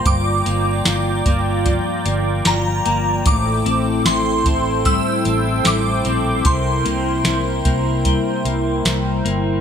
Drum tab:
HH |xxxxxxxx|xxxxxxxx|xxxxxxxx|
SD |--o---o-|--o---o-|--o---o-|
BD |o--oo---|o--oo---|o--oo---|